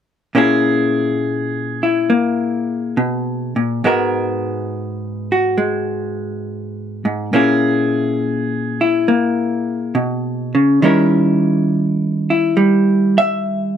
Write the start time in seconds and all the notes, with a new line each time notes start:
0.35 A#2 A#3 C#4 E4 G#4
1.83 E4
2.10 A#3
2.97 B2
3.56 A#2
3.84 G#2 G#3 B3 F#4 A#4
5.32 F#4
5.58 G#3
7.05 G#2
7.33 A#2 A#3 C#4 E4 G#4
8.81 E4
9.08 A#3
9.95 B2
10.55 C#3
10.82 D#3 G3 C#4 E4 A#4
12.30 E4
12.57 G3
13.18 E5